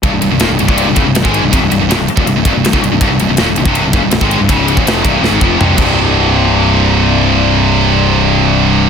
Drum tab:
CC |----------------|----------------|----------------|--------------x-|
RD |x-x-x-x-x-x-x-x-|x-x-x-x-x-x-x-x-|x-x-x-x-x-x-x-x-|x-x-x-x---------|
SD |----o-------o---|----o-------o---|----o-------o---|----o---o-------|
T2 |----------------|----------------|----------------|------------o---|
BD |o------o--o--o--|o------o--o--o--|o------o--o--o--|o--o--o---o---o-|

CC |----------------|----------------|
RD |----------------|----------------|
SD |----------------|----------------|
T2 |----------------|----------------|
BD |----------------|----------------|